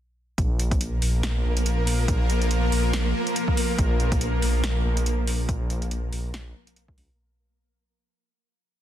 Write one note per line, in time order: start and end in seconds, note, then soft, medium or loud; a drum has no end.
0.38 1.01 A#1 loud
0.38 7.15 F3 medium
0.38 7.15 A#3 medium
0.38 7.20 A#3 medium
0.38 7.15 A#4 medium
0.38 7.20 A#4 medium
0.38 kick loud
0.38 closed hi-hat medium
0.59 closed hi-hat medium
0.71 kick loud
0.71 closed hi-hat medium
0.81 closed hi-hat medium
1.02 1.43 A#1 medium
1.02 open hi-hat medium
1.23 snare loud
1.23 closed hi-hat medium
1.45 2.07 A#1 medium
1.57 closed hi-hat medium
1.66 closed hi-hat medium
1.87 open hi-hat loud
2.08 2.71 A#1 loud
2.08 kick loud
2.08 closed hi-hat medium
2.30 closed hi-hat medium
2.42 closed hi-hat medium
2.51 closed hi-hat medium
2.72 3.14 A#1 medium
2.72 open hi-hat medium
2.93 snare loud
2.93 closed hi-hat medium
3.27 closed hi-hat medium
3.36 closed hi-hat medium
3.48 kick medium
3.57 open hi-hat medium
3.78 4.41 A#1 loud
3.78 kick loud
3.78 closed hi-hat medium
4.00 closed hi-hat medium
4.12 kick loud
4.12 closed hi-hat medium
4.21 closed hi-hat medium
4.42 4.84 A#1 medium
4.42 open hi-hat medium
4.64 snare loud
4.64 closed hi-hat medium
4.85 5.48 A#1 loud
4.97 closed hi-hat medium
5.06 closed hi-hat medium
5.27 open hi-hat medium
5.49 6.11 A#1 loud
5.49 kick loud
5.49 closed hi-hat medium
5.70 closed hi-hat medium
5.82 closed hi-hat medium
5.91 closed hi-hat medium
6.12 6.54 A#1 medium
6.12 open hi-hat medium
6.34 snare loud
6.34 closed hi-hat medium
6.67 closed hi-hat medium
6.76 closed hi-hat medium
6.88 kick medium
6.98 7.09 C#2 loud
6.98 open hi-hat medium